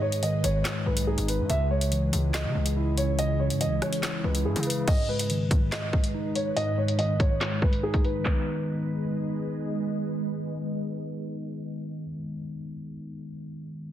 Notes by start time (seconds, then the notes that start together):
Already playing: G#2 D#3 G#3 D#4 G#4 B4 D#5
0.02 G#3 C#5
0.12 closed hi-hat
0.23 D#3 D#5, closed hi-hat
0.44 G#1 C#5, closed hi-hat
0.65 snare, clap, closed hi-hat
0.86 B1 G#3 B4
0.97 closed hi-hat
1.07 D#4 G#4
1.18 G#1, closed hi-hat
1.28 B4, closed hi-hat
1.39 G#2
1.49 C#2 C#3 C#4 E4 G#4 E5, closed hi-hat
1.71 G#3 C#5
1.81 closed hi-hat
1.92 E3, closed hi-hat
2.13 C#2, closed hi-hat
2.34 D#5, snare, clap, closed hi-hat
2.45 C#3
2.55 C#2 G#3
2.66 closed hi-hat
2.76 E4
2.97 C#5, closed hi-hat
3.19 C#3 D#5, closed hi-hat
3.39 G#3 C#5
3.50 G#2, closed hi-hat
3.61 E3 D#5, closed hi-hat
3.66 C#2
3.82 C#5, cross-stick, closed hi-hat
3.93 closed hi-hat
4.03 snare, clap, closed hi-hat
4.24 C#2 G#3 B4
4.35 closed hi-hat
4.45 G#2 E4 G#4
4.56 C#3, closed hi-hat
4.63 B4, closed hi-hat
4.70 closed hi-hat
4.87 G#2 G#3 D#4 B4 D#5, kick, closed hi-hat, crash
5.08 G#3 B4
5.19 closed hi-hat
5.30 D#3, closed hi-hat
5.51 kick, closed hi-hat
5.72 D#5, snare, clap, closed hi-hat
5.93 G#3, kick
6.04 closed hi-hat
6.14 D#4
6.35 C#5, closed hi-hat
6.56 G#2 D#5, closed hi-hat
6.78 G#3 C#5
6.88 closed hi-hat
6.99 D#3 D#5, closed hi-hat
7.20 C#5, kick, closed hi-hat
7.41 snare, clap, closed hi-hat
7.62 G#3 B4, kick
7.73 closed hi-hat
7.83 D#4 G#4
7.94 kick, closed hi-hat
8.05 B4, closed hi-hat
8.20 D#3
8.24 G#3 B3 G#4 B4 D#5, kick, clap
8.32 D#4